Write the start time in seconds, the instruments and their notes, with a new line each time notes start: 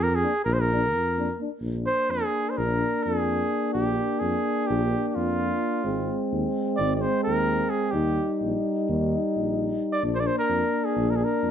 Already playing: tuba F2
0.03 cornet A#4
0.15 cornet G#4
0.23 euphonium A#3 D4
0.45 tuba A#1, cornet A#4
0.53 cornet C5
0.60 cornet A#4
0.72 euphonium A#3 D4
0.94 tuba F2
1.18 euphonium A#3 D4
1.38 euphonium A#3 D4
1.60 tuba A#1, euphonium A#3 D4
1.86 cornet C5
2.09 tuba F2, cornet G#4
2.50 cornet C5
2.58 tuba A#1, cornet A#4
3.03 tuba F2, cornet G#4
3.73 tuba A#1, cornet G4
4.20 tuba F2, cornet G#4
4.67 tuba A#1, cornet G4
5.09 cornet G4
5.15 tuba F2, cornet F4
5.84 tuba G#1, euphonium G#3 C4
6.32 tuba D#2
6.77 tuba G#1, cornet D5
6.96 cornet D5
7.01 cornet C5
7.24 tuba D#2, cornet A#4
7.70 cornet G#4
7.91 tuba D#2, euphonium G3 D#4, cornet G4
8.41 tuba A#1
8.89 tuba D#2
9.36 tuba A#1
9.93 cornet D5
10.01 tuba A#1, euphonium A#3 D4
10.15 cornet C5
10.20 cornet D5
10.27 cornet C5
10.39 cornet A#4
10.49 tuba F2
10.85 cornet G#4
10.96 tuba A#1
11.10 cornet A#4
11.16 cornet G#4
11.25 cornet A#4
11.43 tuba F2